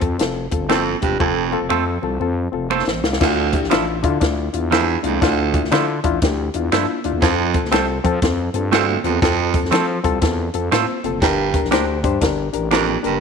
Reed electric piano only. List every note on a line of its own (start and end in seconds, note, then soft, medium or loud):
0.00 0.16 C4 medium
0.00 0.16 F4 medium
0.00 0.16 A4 medium
0.19 0.45 C4 medium
0.19 0.46 F4 medium
0.19 0.46 A4 medium
0.51 0.66 C4 medium
0.51 0.67 F4 medium
0.51 0.67 A4 medium
0.69 0.96 C4 loud
0.69 0.96 F4 medium
0.69 0.96 A4 loud
1.02 1.16 C4 medium
1.02 1.17 F4 medium
1.02 1.17 G4 medium
1.20 1.46 C4 medium
1.20 1.46 F4 medium
1.20 1.47 A4 loud
1.52 1.67 C4 loud
1.52 1.67 F4 medium
1.52 1.67 A4 loud
1.70 1.96 C4 medium
1.70 1.96 F4 medium
1.70 1.97 A4 medium
2.02 2.17 C4 medium
2.02 2.17 F4 medium
2.02 2.18 A4 loud
2.20 2.46 C4 medium
2.20 2.47 F4 medium
2.20 2.47 A4 medium
2.52 2.67 C4 medium
2.52 2.67 F4 medium
2.52 2.68 A4 medium
2.71 3.02 C5 medium
3.04 3.51 F5 medium
3.20 3.47 D4 loud
3.20 3.47 E4 loud
3.20 3.48 F4 loud
3.53 3.67 D4 medium
3.53 3.68 E4 medium
3.53 3.68 G4 medium
3.71 3.97 D4 loud
3.71 3.97 E4 loud
3.71 3.98 F4 loud
4.03 4.17 D4 loud
4.03 4.18 E4 loud
4.03 4.18 F4 loud
4.21 4.47 D4 medium
4.21 4.47 E4 medium
4.21 4.48 F4 medium
4.53 4.68 D4 medium
4.53 4.68 E4 medium
4.53 4.69 F4 medium
4.71 4.97 D4 medium
4.71 4.97 E4 medium
4.71 4.98 F4 medium
5.03 5.18 D4 medium
5.03 5.18 E4 medium
5.03 5.18 F4 medium
5.21 5.47 D4 loud
5.21 5.48 E4 loud
5.21 5.48 F4 loud
5.53 5.68 D4 medium
5.53 5.68 E4 medium
5.53 5.69 F4 medium
5.72 5.97 D4 loud
5.72 5.98 E4 loud
5.72 5.98 F4 loud
6.04 6.18 D4 loud
6.04 6.19 E4 loud
6.04 6.19 F4 loud
6.22 6.48 D4 medium
6.22 6.48 E4 medium
6.22 6.48 G4 medium
6.55 6.69 D4 medium
6.55 6.69 E4 medium
6.55 6.69 F4 loud
6.72 6.98 D4 medium
6.72 6.98 E4 medium
6.72 6.99 F4 medium
7.05 7.19 D4 medium
7.05 7.19 E4 medium
7.05 7.19 F4 medium
7.22 7.48 C4 loud
7.22 7.48 F4 loud
7.22 7.48 A4 loud
7.54 7.68 C4 medium
7.54 7.69 F4 medium
7.54 7.69 A4 medium
7.71 7.97 C4 loud
7.71 7.98 F4 medium
7.71 7.98 A4 loud
8.04 8.18 C4 loud
8.04 8.19 F4 loud
8.04 8.19 A4 loud
8.22 8.48 C4 medium
8.22 8.48 F4 medium
8.22 8.49 A4 medium
8.54 8.68 C4 medium
8.54 8.69 F4 medium
8.54 8.69 A4 medium
8.72 8.98 C4 medium
8.72 8.98 F4 medium
8.72 8.99 A4 medium
9.04 9.18 C4 medium
9.04 9.19 F4 medium
9.04 9.19 A4 medium
9.22 9.48 C4 loud
9.22 9.48 F4 medium
9.22 9.49 A4 loud
9.54 9.68 C4 medium
9.54 9.69 F4 medium
9.54 9.69 A4 medium
9.71 9.97 C4 loud
9.71 9.98 F4 loud
9.71 9.98 A4 loud
10.04 10.18 C4 loud
10.04 10.18 F4 loud
10.04 10.19 A4 loud
10.21 10.47 C4 medium
10.21 10.48 F4 medium
10.21 10.48 A4 medium
10.54 10.68 C4 medium
10.54 10.69 F4 medium
10.54 10.69 A4 loud
10.72 10.98 C4 medium
10.72 10.98 F4 medium
10.72 10.98 C5 medium
11.04 11.18 C4 medium
11.04 11.19 F4 medium
11.04 11.19 A4 medium
11.22 11.47 D4 loud
11.22 11.48 G4 medium
11.22 11.48 A#4 loud
11.54 11.68 D4 medium
11.54 11.69 G4 medium
11.54 11.69 A#4 medium
11.71 11.97 D4 loud
11.71 11.98 G4 medium
11.71 11.98 C5 loud
12.04 12.18 D4 loud
12.04 12.18 G4 loud
12.04 12.19 C5 loud
12.21 12.47 D4 medium
12.21 12.47 G4 medium
12.21 12.48 A#4 medium
12.53 12.68 D4 medium
12.53 12.68 G4 medium
12.53 12.68 A#4 medium
12.71 12.97 D4 medium
12.71 12.97 G4 medium
12.71 12.98 A#4 medium
13.03 13.18 D4 medium
13.03 13.18 G4 medium
13.03 13.18 A#4 medium